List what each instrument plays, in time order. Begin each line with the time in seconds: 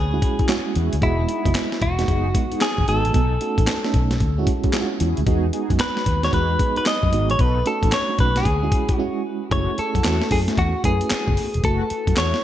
Already playing: fingered electric bass D2, clean electric guitar G#4
0.13 fm electric piano G#3 C#4 E4 F#4
0.22 kick, closed hi-hat
0.39 analog polysynth C#4 E4 F#4 G#4, kick, closed hi-hat
0.48 fm electric piano G#3 C#4 E4 F#4, snare, clap, closed hi-hat
0.75 fingered electric bass E2, analog polysynth C#4 E4 F#4 G#4, closed hi-hat
0.93 fingered electric bass D2, closed hi-hat
1.02 fingered electric bass E1, fm electric piano G#3 B3 F#4 D#5, analog polysynth D#4 F#4 G#4, clean electric guitar E4, kick, closed hi-hat
1.28 analog polysynth D#4 F#4 G#4, closed hi-hat
1.45 fingered electric bass F#1, fm electric piano G#3 B3 F#4 D#5, kick, closed hi-hat
1.55 snare, clap, closed hi-hat
1.72 snare
1.82 fingered electric bass E1, clean electric guitar F#4, kick, closed hi-hat
1.98 fm electric piano G#3 B3 D#4 F#4, snare, closed hi-hat
2.08 fingered electric bass F#1, analog polysynth D#4 F#4 G#4, kick, closed hi-hat
2.34 fm electric piano G#3 B3 D#4 F#4, kick, closed hi-hat
2.51 analog polysynth D#4 F#4 G#4, closed hi-hat
2.61 clean electric guitar G#4, snare, clap, closed hi-hat
2.78 fingered electric bass G#1, kick
2.87 fingered electric bass G#1, fm electric piano G#3 B3 D#4 F#4, analog polysynth D#4 F#4 G#4, clean electric guitar A4, closed hi-hat
3.05 fingered electric bass A1, closed hi-hat
3.14 fingered electric bass B1, analog polysynth B3 D#4 A4, kick, closed hi-hat
3.41 fm electric piano A3 C#4 D#4 F#4, closed hi-hat
3.58 fingered electric bass A1, analog polysynth B3 D#4 A4, kick, closed hi-hat
3.67 snare, clap, closed hi-hat
3.84 fm electric piano A3 C#4 D#4 A4, snare
3.94 fingered electric bass B1, kick, closed hi-hat
4.11 snare, closed hi-hat
4.20 fingered electric bass D2, kick, closed hi-hat
4.38 fm electric piano G#3 C#4 E4 F#4
4.47 kick, closed hi-hat
4.64 analog polysynth C#4 E4 F#4 G#4, kick, closed hi-hat
4.73 fm electric piano G#3 C#4 E4 F4, snare, clap, closed hi-hat
4.81 fm electric piano F#4
5.00 fingered electric bass E2, analog polysynth C#4 E4 F#4 G#4, closed hi-hat
5.17 fingered electric bass D2, closed hi-hat
5.26 fm electric piano G#3 B3 D#4 F#4, analog polysynth D#4 F#4 G#4, kick, closed hi-hat
5.53 analog polysynth D#4 F#4 G#4, closed hi-hat
5.70 fingered electric bass F#2, fm electric piano G#3 B3 D#4 F#4, kick, closed hi-hat
5.80 clean electric guitar B4, snare, clap, closed hi-hat
5.97 snare
6.06 fingered electric bass D#2, kick, closed hi-hat
6.23 fm electric piano G#3 B3 D#4 F#4, clean electric guitar C#5, snare, closed hi-hat
6.32 fingered electric bass E2, analog polysynth D#4 F#4 G#4, clean electric guitar B4, kick, closed hi-hat
6.59 fm electric piano G#3 B3 D#4 G#4, kick, closed hi-hat
6.76 analog polysynth D#4 F#4 G#4, clean electric guitar B4, closed hi-hat
6.86 clean electric guitar D#5, snare, clap, closed hi-hat
7.03 fingered electric bass F#2, kick
7.12 fingered electric bass G#1, fm electric piano G#3 B3 D#4 F#4, analog polysynth D#4 F#4 G#4, closed hi-hat
7.30 fingered electric bass A1, clean electric guitar C#5, closed hi-hat
7.39 fingered electric bass B1, analog polysynth B3 D#4 A4, clean electric guitar B4, kick, closed hi-hat
7.66 fm electric piano A3 C#4 D#4 F#4, clean electric guitar A4, closed hi-hat
7.83 fingered electric bass A1, analog polysynth B3 D#4 A4, kick, closed hi-hat
7.92 clean electric guitar C#5, snare, clap, closed hi-hat
8.09 fm electric piano A3 C#4 D#4 F#4
8.19 fingered electric bass B1, clean electric guitar B4, kick, closed hi-hat
8.36 clean electric guitar G#4, snare, closed hi-hat
8.45 fingered electric bass D2, kick, closed hi-hat
8.62 fm electric piano G#3 C#4 E4 F#4
8.72 kick, closed hi-hat
8.89 analog polysynth C#4 E4 F#4 G#4, kick, closed hi-hat
8.97 fm electric piano G#3 C#4 E4 F#4, clean electric guitar F#4
9.51 fingered electric bass F#1, analog polysynth A3 E4 F#4, fm electric piano A3 C#4 E4 G#4, clean electric guitar C#5, kick, closed hi-hat
9.78 fm electric piano A3 C#4 E4, clean electric guitar A4, muted fingered electric bass stroke, closed hi-hat
9.95 fingered electric bass F#2, analog polysynth A3 E4 F#4, kick, closed hi-hat
10.04 fingered electric bass E2, fm electric piano A3 C#4 E4 F#4, analog polysynth A3 E4 F#4, snare, clap, closed hi-hat
10.22 snare
10.31 fingered electric bass F#2, fm electric piano A3 C#4 E4 A4, clean electric guitar G#4, kick, open hi-hat
10.48 analog polysynth A3 E4 F#4, snare, closed hi-hat
10.58 fingered electric bass E2, clean electric guitar F#4, kick, closed hi-hat
10.84 fingered electric bass F#2, fm electric piano A3 C#4 E4 B4, clean electric guitar G#4, kick, closed hi-hat
11.01 closed hi-hat
11.10 muted fingered electric bass stroke, snare, clap, closed hi-hat
11.28 fingered electric bass F#1, kick
11.37 open hi-hat
11.54 fingered electric bass E1, closed hi-hat
11.63 fingered electric bass F#1, analog polysynth A3 E4 F#4, clean electric guitar A4, kick, closed hi-hat
11.90 muted fingered electric bass stroke, closed hi-hat
12.07 fingered electric bass F#2, analog polysynth A3 E4 F#4, kick, closed hi-hat
12.16 fingered electric bass E2, analog polysynth A3 E4 F#4, clean electric guitar C#5, snare, clap, closed hi-hat
12.34 snare